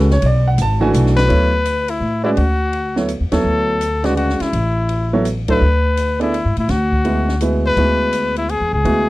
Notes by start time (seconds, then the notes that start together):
Already playing: C#2 B4
0.10 C#5, snare
0.22 B1, ride
0.26 D5
0.48 F#5
0.58 G#1, hi-hat pedal, ride
0.62 A5
0.80 E3 A3 D4 F#4 G#5
0.93 B1, hi-hat pedal, ride
1.06 snare
1.17 B4, snare, ride
1.28 D2 F#3 B3 E4 A4 C#5, ride
1.65 hi-hat pedal, ride
1.88 E4, ride
2.01 A2
2.23 G#3 C#4 E4 F#4 B4 D5
2.37 D2 F#4, ride
2.73 ride
2.96 F#3 B3 E4 A4 C#5, snare
3.08 hi-hat pedal, ride
3.20 E2
3.32 D#2 F#3 B3 E4 A4 C#5, snare, ride
3.44 D2
3.81 hi-hat pedal, ride
4.04 C#3 G#3 F#4 B4 D5, snare, ride
4.17 F#4, ride
4.29 snare
4.40 E4, muted upright bass stroke, snare, ride
4.53 A1, ride
4.89 ride
5.13 F#3 B3 E4 A4 C#5
5.25 hi-hat pedal, ride
5.48 F#3 A3 D4 E4 A4 B4, kick, ride
5.61 D2
5.97 hi-hat pedal, ride
6.20 B3 D4 E4 G#4 A4 D5, ride
6.34 ride
6.45 G#2
6.57 A2 E4, ride
6.68 D2 F#4, snare, ride
6.92 kick
7.05 G#3 B3 E4 F#4 B4, ride
7.28 snare
7.41 G#3 B3 E4 F#4 B4, hi-hat pedal, ride
7.66 B4
7.76 D2 G#3 B3 E4 F#4 B4, ride
8.13 hi-hat pedal, ride
8.36 E4, ride
8.49 G#4, ride
8.61 E2
8.73 C#2 G#4
8.84 D2 G#3 B3 E4 F#4 B4, ride